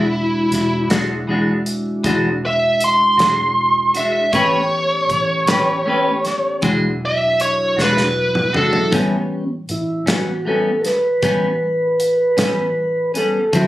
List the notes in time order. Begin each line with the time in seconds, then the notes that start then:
Already playing: E1 G#3 D4 E4 F#4
0.51 E1, snare, closed hi-hat
0.89 E1 G#3 D4 F#4, snare, closed hi-hat
1.27 E3 G#3 D4 F#4
1.66 closed hi-hat
2.04 E1 E3 G#3 D4 F#4, kick, closed hi-hat
2.46 E5
2.81 C6, closed hi-hat
3.17 E1 G#3 D4 F#4, snare, closed hi-hat
3.94 G#3 D4 F#4 E5, closed hi-hat
4.33 A1 A3 B3 C#4 G4 B4 C#5, kick, closed hi-hat
5.09 A1, kick, closed hi-hat
5.47 A1 C#4 G4 B4, snare, closed hi-hat
5.86 A3 C#4 G4 B4
6.25 snare, closed hi-hat
6.62 E1 E3 F#3 G#3 D4 E4 F#4, kick, closed hi-hat
7.05 E5
7.40 C#5, closed hi-hat
7.77 E1 G#3 D4 F#4, snare
7.82 B4
7.97 snare
8.35 mid tom
8.53 G#3 D4 F#4 A4, mid tom
8.73 floor tom
8.91 A1 A2 G3 B3 C#4, kick, closed hi-hat
9.69 A1 E4, closed hi-hat
10.06 A1 G3 B3 C#4 F#4, snare, closed hi-hat
10.45 A2 G3 B3 C#4 A4
10.81 A#4, closed hi-hat
10.86 B4, snare
11.22 A1 A2 G3 B3 C#4, kick, closed hi-hat
12.00 closed hi-hat
12.37 A1 G3 B3 C#4, snare, closed hi-hat
13.14 G3 B3 C#4 A4, closed hi-hat
13.53 D2 D3 F#3 C4 E4 F#4, kick, closed hi-hat
13.57 E4